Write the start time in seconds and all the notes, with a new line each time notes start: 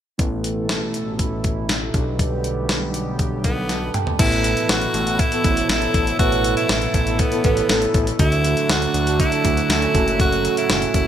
0.18 A1 A2 B2 E3 A3 B3 E4 A4 B4, kick, closed hi-hat
0.44 closed hi-hat
0.69 snare, closed hi-hat
0.94 closed hi-hat
1.19 kick, closed hi-hat
1.44 kick, closed hi-hat
1.69 snare, closed hi-hat
1.93 B1 B2 D3 G3 B3 D4 G4 A4 B4, kick, closed hi-hat
2.19 kick, closed hi-hat
2.44 closed hi-hat
2.69 snare, closed hi-hat
2.94 closed hi-hat
3.19 kick, closed hi-hat
3.44 B3, kick, closed hi-hat
3.69 A5, snare, closed hi-hat
3.94 G5, closed hi-hat, mid tom
4.07 floor tom
4.19 A1 A2 B2 E3 A3 B3 E4 A4 B4, kick, closed hi-hat, crash
4.32 closed hi-hat
4.44 closed hi-hat
4.57 closed hi-hat
4.69 A1 F#4, snare, closed hi-hat
4.81 closed hi-hat
4.94 A1, closed hi-hat
5.07 B3 E4 A4, closed hi-hat
5.19 E4, kick, closed hi-hat
5.32 B3 E4 A4, closed hi-hat
5.44 A1 B3 E4 A4 C5, kick, closed hi-hat
5.51 C#5
5.57 closed hi-hat
5.69 A1 B3 E4 A4, snare, closed hi-hat
5.82 closed hi-hat
5.94 A1, kick, closed hi-hat
6.07 closed hi-hat
6.19 A1 A2 B3 E4 F#4 A4 B4, kick, closed hi-hat
6.32 closed hi-hat
6.44 closed hi-hat
6.57 E4, closed hi-hat
6.69 A1, snare, closed hi-hat
6.82 closed hi-hat
6.94 A1 E4, kick, closed hi-hat
7.07 B3 E4 A4, closed hi-hat
7.19 B3, kick, closed hi-hat
7.32 B3 E4 A4, closed hi-hat
7.44 A1 B3 E4 A4 B4, kick, closed hi-hat
7.57 closed hi-hat
7.69 A1 B3 E4 A4, snare, closed hi-hat
7.82 closed hi-hat
7.94 A1, kick, closed hi-hat
8.07 closed hi-hat
8.19 D2 A2 D3 F#3 A3 D4 E4 F#4 A4, kick, closed hi-hat
8.32 closed hi-hat
8.44 closed hi-hat
8.57 closed hi-hat
8.69 D2 F#4, snare, closed hi-hat
8.82 closed hi-hat
8.94 D2, closed hi-hat
9.07 D4 F#4 A4, closed hi-hat
9.20 E4, kick, closed hi-hat
9.32 D4 F#4 A4, closed hi-hat
9.44 D2 A3 D4 F#4 A4, kick, closed hi-hat
9.57 closed hi-hat
9.69 D2 C#4 E4 F#4 A4, snare, closed hi-hat
9.82 closed hi-hat
9.94 F#1 C#3 A3 C#4 F#4 A4, kick, closed hi-hat
10.08 closed hi-hat
10.20 F#4, kick, closed hi-hat
10.32 closed hi-hat
10.45 closed hi-hat
10.57 E4, closed hi-hat
10.69 F#1, snare, closed hi-hat
10.82 closed hi-hat
10.94 F#1 E4, kick, closed hi-hat